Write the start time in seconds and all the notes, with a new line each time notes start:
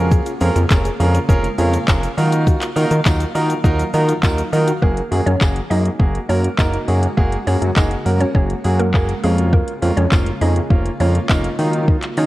Already playing: F2 C#3 G#3 A#3 C#4 F4 G#4 A#4 F5
0.12 G#4, kick, shaker
0.26 F4, closed hi-hat, shaker
0.41 F2 C#4 F4 G#4 A#4, open hi-hat, shaker
0.56 F2 A#3, closed hi-hat, shaker
0.70 F1 G#3 C#4 F4 G#4 A#4, kick, clap, tambourine, shaker
0.85 G#4, closed hi-hat, shaker
1.00 F2 C#4 F4 G#4 A#4, open hi-hat, shaker
1.15 C#4, closed hi-hat, shaker
1.29 F1 A#3 C#4 F4 G#4 A#4, kick, shaker
1.44 G#3, closed hi-hat, shaker
1.58 F2 C#4 F4 G#4 A#4, open hi-hat, shaker
1.74 F4, closed hi-hat, shaker
1.88 F1 C#4 F4 G#4 A#4, kick, clap, tambourine, shaker
2.03 A#3, closed hi-hat, shaker
2.17 D#3 F#3 D#4 F4 F#4 A#4, open hi-hat, shaker
2.32 F#4, closed hi-hat, shaker
2.47 F#4, kick, shaker
2.61 F4, clap, closed hi-hat, shaker
2.76 D#3 D#4 F4 F#4 A#4, open hi-hat, shaker
2.91 D#3 A#3, closed hi-hat, shaker
3.05 D#2 F#3 D#4 F4 F#4 A#4, kick, clap, tambourine, shaker
3.20 F#4, closed hi-hat, shaker
3.35 D#3 D#4 F4 F#4 A#4, open hi-hat, shaker
3.50 D#4, closed hi-hat, shaker
3.64 D#2 A#3 D#4 F4 F#4 A#4, kick, shaker
3.79 F#3, closed hi-hat, shaker
3.94 D#3 D#4 F4 F#4 A#4, open hi-hat, shaker
4.09 F4, closed hi-hat, shaker
4.23 D#2 D#4 F4 F#4 A#4, kick, clap, tambourine, shaker
4.38 A#3, closed hi-hat, shaker
4.53 D#3 F#3 D#4 F4 F#4 A#4, open hi-hat, shaker
4.68 F#4, closed hi-hat, shaker
4.82 F#1 C#3 G#3 A#3 F#4 G#4 A#4, kick
4.97 closed hi-hat
5.11 F#2 A#3 F#4 G#4, open hi-hat
5.26 F#2 C#4 C#5, closed hi-hat
5.41 F#1 A#3 F#4 G#4, kick, clap, tambourine
5.56 closed hi-hat
5.70 F#2 A#3 D#4 F#4 G#4 D#5, open hi-hat
5.86 closed hi-hat
6.00 F#1 A#3 F#4 G#4, kick
6.15 closed hi-hat
6.29 F#2 A#3 C#4 F#4 A#4 C#5, open hi-hat
6.44 closed hi-hat
6.58 F#1 A#3 D#4 F#4 A#4 D#5, kick, clap, tambourine
6.74 closed hi-hat
6.88 F#2 A#3 F#4 G#4, open hi-hat
7.03 closed hi-hat
7.17 F#1 A#3 F#4 G#4, kick
7.32 closed hi-hat
7.47 F#2 A#3 C#4 F#4 G#4 C#5, open hi-hat
7.62 F#2, closed hi-hat
7.76 F#1 A#3 D#4 F#4 G#4 D#5, kick, clap, tambourine
7.91 closed hi-hat
8.05 F#2 A#3 F#4 A#4, open hi-hat
8.21 C#4 C#5, closed hi-hat
8.35 F#1 A#3 C#4 F#4 G#4 C#5, kick
8.50 closed hi-hat
8.64 F#2 A#3 F#4 G#4, open hi-hat
8.79 A#3 A#4, closed hi-hat
8.93 F#1 A#3 F#4 G#4 A#4, kick, clap, tambourine
9.09 closed hi-hat
9.23 F2 G#3 A#3 C#4 F4 G#4, open hi-hat
9.38 closed hi-hat
9.53 A#3 A#4, kick
9.68 closed hi-hat
9.82 F2 A#3 C#4 F4, open hi-hat
9.97 F2 C#4 C#5, closed hi-hat
10.11 F1 A#3 C#4 F4, kick, clap, tambourine
10.26 closed hi-hat
10.41 F2 A#3 C#4 D#4 G#4 D#5, open hi-hat
10.56 closed hi-hat
10.70 F1 A#3 C#4 F4, kick
10.85 closed hi-hat
11.00 F2 A#3 C#4 F4 C#5, open hi-hat
11.15 closed hi-hat
11.29 F1 A#3 C#4 D#4 F4 D#5, kick, clap, tambourine
11.44 closed hi-hat
11.58 D#3 F#3 D#4 F4, open hi-hat
11.73 closed hi-hat
11.88 kick
12.03 clap, closed hi-hat
12.17 D#3 F#3 C#4 D#4 F4 C#5, open hi-hat